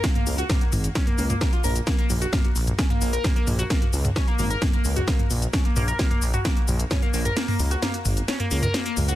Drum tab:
HH |xxoxxxoxxxoxxxox|xxoxxxoxxxoxxxox|xxoxxxoxxxoxxxox|xxoxxxoxxxoxxxox|
SH |x-xxx-xxx-xxx-xx|x-xxx-xxx-xxx-xx|x-xxx-xxx-xxx-xx|x-xxx-xxx-xxx-xx|
SD |o---o---o---o---|o---o---o---o---|o---o---o---o---|o---o---o---o---|
T2 |-o--o-o--o-o--o-|--o-o--o-o--o-o-|-o-o--o-o--o-o--|o-o--o-o--o-o--o|
BD |o---o---o---o---|o---o---o---o---|o---o---o---o---|o---o---o---o---|

HH |xooxxxoxxxoxxxox|
SH |x-xxx-xxx-xxx-xx|
SD |o---o---o---o---|
T2 |-o--o-o--o-o--o-|
BD |----------------|